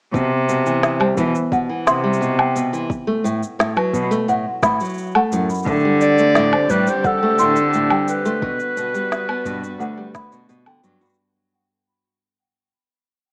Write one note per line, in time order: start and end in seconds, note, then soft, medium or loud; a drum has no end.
0.14 0.31 B2 medium
0.14 1.07 C3 loud
0.14 kick loud
0.14 cabasa soft
0.49 0.65 B2 medium
0.49 cabasa medium
0.66 0.99 E3 medium
0.66 cabasa soft
0.83 snare medium
0.83 cabasa soft
1.00 1.16 G3 medium
1.00 1.17 C5 medium
1.00 low woodblock medium
1.17 1.34 B2 loud
1.17 1.28 E3 medium
1.17 kick medium
1.17 cabasa medium
1.35 cabasa soft
1.52 1.68 B2 medium
1.52 1.69 F#5 medium
1.52 kick medium
1.52 cabasa soft
1.69 2.02 E3 medium
1.87 2.80 C3 medium
1.87 2.03 C6 medium
1.87 snare medium
1.87 cabasa medium
2.04 2.20 G3 medium
2.13 cabasa soft
2.21 2.38 B2 medium
2.21 cabasa soft
2.39 2.55 G5 loud
2.39 low woodblock medium
2.55 2.71 B2 medium
2.55 cabasa medium
2.73 2.90 E3 medium
2.73 cabasa soft
2.90 kick loud
2.90 cabasa soft
3.07 3.23 A3 medium
3.24 3.41 A2 medium
3.24 cabasa medium
3.43 cabasa soft
3.59 3.75 A2 medium
3.59 snare medium
3.59 cabasa soft
3.77 4.09 F#3 medium
3.77 3.93 B4 medium
3.77 low woodblock medium
3.93 4.04 B2 medium
3.93 kick medium
3.93 cabasa medium
4.11 4.27 A3 loud
4.11 cabasa soft
4.28 4.45 A2 medium
4.28 4.45 F#5 medium
4.28 cabasa soft
4.63 4.79 A2 medium
4.63 4.80 B5 medium
4.63 kick loud
4.63 snare medium
4.63 cabasa medium
4.80 5.13 F#3 medium
4.80 cabasa soft
4.84 cabasa soft
4.89 cabasa soft
4.94 cabasa soft
4.98 cabasa soft
5.02 cabasa soft
5.06 cabasa soft
5.11 5.30 A3 medium
5.11 cabasa soft
5.11 low woodblock medium
5.16 5.32 F#5 loud
5.32 5.42 F#2 medium
5.32 5.49 A2 loud
5.32 cabasa medium
5.50 cabasa soft
5.54 cabasa soft
5.58 cabasa soft
5.66 5.82 A2 medium
5.66 6.59 D3 loud
5.66 8.40 D3 medium
5.66 8.40 C4 medium
5.66 8.39 G4 medium
5.66 kick loud
5.66 cabasa soft
5.76 cabasa soft
5.80 cabasa soft
5.85 6.17 G3 medium
6.01 6.72 D5 loud
6.01 cabasa medium
6.18 6.34 A3 loud
6.18 cabasa soft
6.35 6.52 A2 loud
6.35 snare medium
6.35 cabasa soft
6.53 6.69 C5 medium
6.53 low woodblock medium
6.70 6.86 A2 medium
6.70 6.80 G3 medium
6.70 6.90 B4 loud
6.70 kick medium
6.70 cabasa medium
6.87 7.21 G3 medium
6.87 7.08 C5 medium
6.87 cabasa soft
7.04 8.09 A4 loud
7.04 7.21 F#5 medium
7.04 kick loud
7.04 cabasa soft
7.23 7.38 A3 medium
7.39 7.56 A2 medium
7.39 8.32 D3 medium
7.39 7.55 C6 loud
7.39 cabasa medium
7.56 cabasa soft
7.73 7.89 A2 medium
7.73 cabasa soft
7.90 8.24 G3 medium
7.90 8.07 G5 loud
7.90 low woodblock medium
8.08 10.46 B4 medium
8.08 cabasa medium
8.25 8.41 A3 loud
8.25 cabasa soft
8.42 8.59 B2 loud
8.42 11.15 G3 medium
8.42 11.15 F#4 medium
8.42 11.15 B4 medium
8.42 kick loud
8.60 cabasa soft
8.77 8.92 B2 medium
8.77 cabasa medium
8.94 9.27 G3 medium
8.94 cabasa soft
9.12 snare medium
9.12 cabasa soft
9.29 9.44 B3 loud
9.29 9.45 B4 medium
9.29 low woodblock medium
9.45 9.56 G2 medium
9.45 9.62 B2 loud
9.45 kick medium
9.45 cabasa medium
9.64 cabasa soft
9.80 9.91 D2 loud
9.80 9.96 B2 medium
9.80 9.97 F#5 medium
9.80 cabasa soft
9.97 10.13 G3 medium
10.15 10.31 B5 loud
10.15 kick loud
10.15 snare medium
10.15 cabasa medium
10.32 10.48 B2 medium
10.32 cabasa soft
10.49 10.65 B2 medium
10.49 cabasa soft
10.66 10.82 D3 medium
10.66 10.83 G5 loud
10.66 low woodblock medium
10.83 11.04 G2 medium
10.83 10.99 F#3 loud
10.83 cabasa medium
11.01 11.17 F#4 medium
11.01 cabasa soft
11.05 cabasa soft
11.09 cabasa soft
11.14 cabasa soft